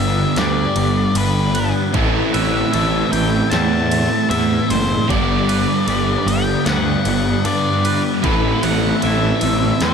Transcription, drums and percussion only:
0, 0, Header, 1, 2, 480
1, 0, Start_track
1, 0, Tempo, 788436
1, 1181, Time_signature, 4, 2, 24, 8
1, 6051, End_track
2, 0, Start_track
2, 0, Title_t, "Drums"
2, 222, Note_on_c, 9, 51, 77
2, 228, Note_on_c, 9, 38, 111
2, 283, Note_off_c, 9, 51, 0
2, 289, Note_off_c, 9, 38, 0
2, 461, Note_on_c, 9, 51, 63
2, 522, Note_off_c, 9, 51, 0
2, 702, Note_on_c, 9, 51, 92
2, 763, Note_off_c, 9, 51, 0
2, 942, Note_on_c, 9, 51, 60
2, 948, Note_on_c, 9, 38, 31
2, 1003, Note_off_c, 9, 51, 0
2, 1009, Note_off_c, 9, 38, 0
2, 1182, Note_on_c, 9, 51, 79
2, 1183, Note_on_c, 9, 36, 99
2, 1243, Note_off_c, 9, 51, 0
2, 1244, Note_off_c, 9, 36, 0
2, 1426, Note_on_c, 9, 51, 64
2, 1487, Note_off_c, 9, 51, 0
2, 1665, Note_on_c, 9, 51, 92
2, 1726, Note_off_c, 9, 51, 0
2, 1905, Note_on_c, 9, 51, 69
2, 1966, Note_off_c, 9, 51, 0
2, 2140, Note_on_c, 9, 51, 84
2, 2146, Note_on_c, 9, 38, 98
2, 2201, Note_off_c, 9, 51, 0
2, 2207, Note_off_c, 9, 38, 0
2, 2384, Note_on_c, 9, 51, 71
2, 2444, Note_off_c, 9, 51, 0
2, 2624, Note_on_c, 9, 51, 101
2, 2685, Note_off_c, 9, 51, 0
2, 2864, Note_on_c, 9, 51, 71
2, 2870, Note_on_c, 9, 38, 29
2, 2925, Note_off_c, 9, 51, 0
2, 2931, Note_off_c, 9, 38, 0
2, 3102, Note_on_c, 9, 36, 96
2, 3107, Note_on_c, 9, 51, 88
2, 3163, Note_off_c, 9, 36, 0
2, 3168, Note_off_c, 9, 51, 0
2, 3343, Note_on_c, 9, 51, 71
2, 3404, Note_off_c, 9, 51, 0
2, 3578, Note_on_c, 9, 51, 86
2, 3639, Note_off_c, 9, 51, 0
2, 3822, Note_on_c, 9, 51, 66
2, 3883, Note_off_c, 9, 51, 0
2, 4056, Note_on_c, 9, 51, 84
2, 4062, Note_on_c, 9, 38, 105
2, 4116, Note_off_c, 9, 51, 0
2, 4122, Note_off_c, 9, 38, 0
2, 4294, Note_on_c, 9, 51, 66
2, 4355, Note_off_c, 9, 51, 0
2, 4536, Note_on_c, 9, 51, 95
2, 4596, Note_off_c, 9, 51, 0
2, 4778, Note_on_c, 9, 51, 65
2, 4839, Note_off_c, 9, 51, 0
2, 5015, Note_on_c, 9, 51, 84
2, 5016, Note_on_c, 9, 36, 102
2, 5076, Note_off_c, 9, 36, 0
2, 5076, Note_off_c, 9, 51, 0
2, 5254, Note_on_c, 9, 51, 71
2, 5315, Note_off_c, 9, 51, 0
2, 5493, Note_on_c, 9, 51, 85
2, 5554, Note_off_c, 9, 51, 0
2, 5729, Note_on_c, 9, 51, 71
2, 5790, Note_off_c, 9, 51, 0
2, 5970, Note_on_c, 9, 51, 85
2, 5976, Note_on_c, 9, 38, 102
2, 6031, Note_off_c, 9, 51, 0
2, 6037, Note_off_c, 9, 38, 0
2, 6051, End_track
0, 0, End_of_file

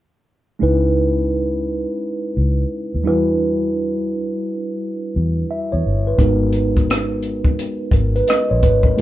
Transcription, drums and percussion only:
0, 0, Header, 1, 2, 480
1, 0, Start_track
1, 0, Key_signature, 4, "minor"
1, 0, Tempo, 697674
1, 415, Time_signature, 4, 2, 24, 8
1, 6202, End_track
2, 0, Start_track
2, 0, Title_t, "Drums"
2, 4256, Note_on_c, 9, 36, 92
2, 4263, Note_on_c, 9, 42, 55
2, 4324, Note_off_c, 9, 36, 0
2, 4332, Note_off_c, 9, 42, 0
2, 4489, Note_on_c, 9, 42, 53
2, 4558, Note_off_c, 9, 42, 0
2, 4656, Note_on_c, 9, 36, 65
2, 4663, Note_on_c, 9, 42, 30
2, 4724, Note_off_c, 9, 36, 0
2, 4732, Note_off_c, 9, 42, 0
2, 4749, Note_on_c, 9, 42, 71
2, 4754, Note_on_c, 9, 37, 89
2, 4818, Note_off_c, 9, 42, 0
2, 4823, Note_off_c, 9, 37, 0
2, 4972, Note_on_c, 9, 42, 44
2, 5040, Note_off_c, 9, 42, 0
2, 5122, Note_on_c, 9, 36, 75
2, 5191, Note_off_c, 9, 36, 0
2, 5223, Note_on_c, 9, 42, 62
2, 5291, Note_off_c, 9, 42, 0
2, 5445, Note_on_c, 9, 36, 84
2, 5456, Note_on_c, 9, 42, 50
2, 5514, Note_off_c, 9, 36, 0
2, 5525, Note_off_c, 9, 42, 0
2, 5612, Note_on_c, 9, 42, 28
2, 5681, Note_off_c, 9, 42, 0
2, 5694, Note_on_c, 9, 42, 71
2, 5710, Note_on_c, 9, 37, 86
2, 5763, Note_off_c, 9, 42, 0
2, 5779, Note_off_c, 9, 37, 0
2, 5936, Note_on_c, 9, 36, 70
2, 5936, Note_on_c, 9, 42, 50
2, 6005, Note_off_c, 9, 36, 0
2, 6005, Note_off_c, 9, 42, 0
2, 6076, Note_on_c, 9, 36, 79
2, 6145, Note_off_c, 9, 36, 0
2, 6182, Note_on_c, 9, 42, 55
2, 6202, Note_off_c, 9, 42, 0
2, 6202, End_track
0, 0, End_of_file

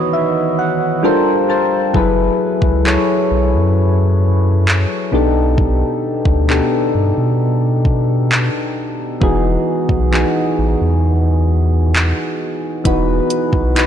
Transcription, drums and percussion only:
0, 0, Header, 1, 2, 480
1, 0, Start_track
1, 0, Tempo, 909091
1, 1026, Time_signature, 4, 2, 24, 8
1, 7321, End_track
2, 0, Start_track
2, 0, Title_t, "Drums"
2, 1026, Note_on_c, 9, 36, 96
2, 1079, Note_off_c, 9, 36, 0
2, 1383, Note_on_c, 9, 36, 83
2, 1435, Note_off_c, 9, 36, 0
2, 1513, Note_on_c, 9, 39, 101
2, 1566, Note_off_c, 9, 39, 0
2, 2473, Note_on_c, 9, 39, 108
2, 2526, Note_off_c, 9, 39, 0
2, 2946, Note_on_c, 9, 36, 98
2, 2999, Note_off_c, 9, 36, 0
2, 3302, Note_on_c, 9, 36, 92
2, 3355, Note_off_c, 9, 36, 0
2, 3433, Note_on_c, 9, 39, 103
2, 3485, Note_off_c, 9, 39, 0
2, 4145, Note_on_c, 9, 36, 86
2, 4198, Note_off_c, 9, 36, 0
2, 4394, Note_on_c, 9, 39, 114
2, 4446, Note_off_c, 9, 39, 0
2, 4866, Note_on_c, 9, 36, 105
2, 4919, Note_off_c, 9, 36, 0
2, 5223, Note_on_c, 9, 36, 86
2, 5275, Note_off_c, 9, 36, 0
2, 5353, Note_on_c, 9, 39, 107
2, 5406, Note_off_c, 9, 39, 0
2, 6314, Note_on_c, 9, 39, 116
2, 6367, Note_off_c, 9, 39, 0
2, 6786, Note_on_c, 9, 36, 108
2, 6786, Note_on_c, 9, 42, 70
2, 6839, Note_off_c, 9, 36, 0
2, 6839, Note_off_c, 9, 42, 0
2, 7024, Note_on_c, 9, 42, 55
2, 7077, Note_off_c, 9, 42, 0
2, 7142, Note_on_c, 9, 36, 94
2, 7195, Note_off_c, 9, 36, 0
2, 7267, Note_on_c, 9, 42, 62
2, 7273, Note_on_c, 9, 39, 114
2, 7320, Note_off_c, 9, 42, 0
2, 7321, Note_off_c, 9, 39, 0
2, 7321, End_track
0, 0, End_of_file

